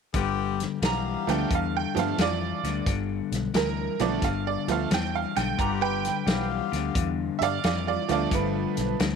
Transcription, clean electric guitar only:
0, 0, Header, 1, 2, 480
1, 0, Start_track
1, 0, Tempo, 681044
1, 98, Time_signature, 4, 2, 24, 8
1, 6454, End_track
2, 0, Start_track
2, 0, Title_t, "Clean electric guitar"
2, 0, Program_c, 0, 27
2, 101, Note_on_c, 0, 43, 76
2, 104, Note_on_c, 0, 50, 81
2, 549, Note_off_c, 0, 43, 0
2, 550, Note_off_c, 0, 50, 0
2, 582, Note_on_c, 0, 43, 85
2, 585, Note_on_c, 0, 52, 100
2, 870, Note_off_c, 0, 43, 0
2, 871, Note_off_c, 0, 52, 0
2, 906, Note_on_c, 0, 43, 72
2, 909, Note_on_c, 0, 50, 75
2, 1046, Note_off_c, 0, 43, 0
2, 1048, Note_off_c, 0, 50, 0
2, 1062, Note_on_c, 0, 43, 79
2, 1066, Note_on_c, 0, 50, 87
2, 1509, Note_off_c, 0, 43, 0
2, 1511, Note_off_c, 0, 50, 0
2, 1542, Note_on_c, 0, 43, 79
2, 1548, Note_on_c, 0, 52, 99
2, 1830, Note_off_c, 0, 43, 0
2, 1833, Note_off_c, 0, 52, 0
2, 1860, Note_on_c, 0, 43, 78
2, 1864, Note_on_c, 0, 50, 89
2, 2004, Note_off_c, 0, 43, 0
2, 2006, Note_off_c, 0, 50, 0
2, 2017, Note_on_c, 0, 43, 82
2, 2020, Note_on_c, 0, 50, 87
2, 2468, Note_off_c, 0, 43, 0
2, 2469, Note_off_c, 0, 50, 0
2, 2496, Note_on_c, 0, 43, 88
2, 2500, Note_on_c, 0, 52, 101
2, 2788, Note_off_c, 0, 43, 0
2, 2790, Note_off_c, 0, 52, 0
2, 2816, Note_on_c, 0, 43, 75
2, 2821, Note_on_c, 0, 50, 78
2, 2962, Note_off_c, 0, 43, 0
2, 2965, Note_off_c, 0, 50, 0
2, 2976, Note_on_c, 0, 43, 84
2, 2979, Note_on_c, 0, 50, 93
2, 3427, Note_off_c, 0, 43, 0
2, 3428, Note_off_c, 0, 50, 0
2, 3459, Note_on_c, 0, 43, 82
2, 3462, Note_on_c, 0, 52, 94
2, 3749, Note_off_c, 0, 43, 0
2, 3750, Note_off_c, 0, 52, 0
2, 3776, Note_on_c, 0, 43, 74
2, 3781, Note_on_c, 0, 50, 76
2, 3922, Note_off_c, 0, 43, 0
2, 3924, Note_off_c, 0, 50, 0
2, 3935, Note_on_c, 0, 43, 81
2, 3937, Note_on_c, 0, 50, 84
2, 4386, Note_off_c, 0, 43, 0
2, 4387, Note_off_c, 0, 50, 0
2, 4417, Note_on_c, 0, 43, 95
2, 4420, Note_on_c, 0, 52, 97
2, 4707, Note_off_c, 0, 43, 0
2, 4709, Note_off_c, 0, 52, 0
2, 4735, Note_on_c, 0, 43, 74
2, 4738, Note_on_c, 0, 50, 81
2, 4881, Note_off_c, 0, 43, 0
2, 4883, Note_off_c, 0, 50, 0
2, 4896, Note_on_c, 0, 43, 85
2, 4900, Note_on_c, 0, 50, 92
2, 5346, Note_off_c, 0, 43, 0
2, 5348, Note_off_c, 0, 50, 0
2, 5382, Note_on_c, 0, 43, 83
2, 5383, Note_on_c, 0, 52, 98
2, 5669, Note_off_c, 0, 43, 0
2, 5670, Note_off_c, 0, 52, 0
2, 5707, Note_on_c, 0, 43, 79
2, 5710, Note_on_c, 0, 50, 74
2, 5846, Note_off_c, 0, 43, 0
2, 5848, Note_off_c, 0, 50, 0
2, 5862, Note_on_c, 0, 43, 78
2, 5865, Note_on_c, 0, 50, 92
2, 6307, Note_off_c, 0, 43, 0
2, 6309, Note_off_c, 0, 50, 0
2, 6341, Note_on_c, 0, 43, 92
2, 6344, Note_on_c, 0, 52, 90
2, 6454, Note_off_c, 0, 43, 0
2, 6454, Note_off_c, 0, 52, 0
2, 6454, End_track
0, 0, End_of_file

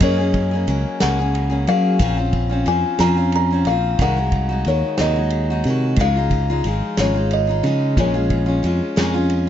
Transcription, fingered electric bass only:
0, 0, Header, 1, 2, 480
1, 0, Start_track
1, 0, Key_signature, -5, "minor"
1, 0, Tempo, 662983
1, 19, Time_signature, 6, 3, 24, 8
1, 6873, End_track
2, 0, Start_track
2, 0, Title_t, "Fingered electric bass"
2, 0, Program_c, 0, 33
2, 6, Note_on_c, 0, 42, 99
2, 468, Note_off_c, 0, 42, 0
2, 491, Note_on_c, 0, 37, 98
2, 609, Note_off_c, 0, 37, 0
2, 743, Note_on_c, 0, 37, 88
2, 1197, Note_off_c, 0, 37, 0
2, 1214, Note_on_c, 0, 54, 90
2, 1438, Note_off_c, 0, 54, 0
2, 1442, Note_on_c, 0, 34, 92
2, 1906, Note_off_c, 0, 34, 0
2, 1933, Note_on_c, 0, 41, 102
2, 2049, Note_off_c, 0, 41, 0
2, 2169, Note_on_c, 0, 41, 94
2, 2629, Note_off_c, 0, 41, 0
2, 2646, Note_on_c, 0, 34, 90
2, 2879, Note_off_c, 0, 34, 0
2, 2893, Note_on_c, 0, 36, 102
2, 3351, Note_off_c, 0, 36, 0
2, 3376, Note_on_c, 0, 39, 105
2, 3491, Note_off_c, 0, 39, 0
2, 3616, Note_on_c, 0, 39, 92
2, 4072, Note_off_c, 0, 39, 0
2, 4094, Note_on_c, 0, 48, 96
2, 4316, Note_off_c, 0, 48, 0
2, 4320, Note_on_c, 0, 37, 103
2, 4784, Note_off_c, 0, 37, 0
2, 4814, Note_on_c, 0, 32, 97
2, 4929, Note_off_c, 0, 32, 0
2, 5055, Note_on_c, 0, 32, 97
2, 5512, Note_off_c, 0, 32, 0
2, 5528, Note_on_c, 0, 49, 98
2, 5760, Note_off_c, 0, 49, 0
2, 5767, Note_on_c, 0, 34, 97
2, 6228, Note_off_c, 0, 34, 0
2, 6256, Note_on_c, 0, 41, 94
2, 6371, Note_off_c, 0, 41, 0
2, 6500, Note_on_c, 0, 41, 94
2, 6873, Note_off_c, 0, 41, 0
2, 6873, End_track
0, 0, End_of_file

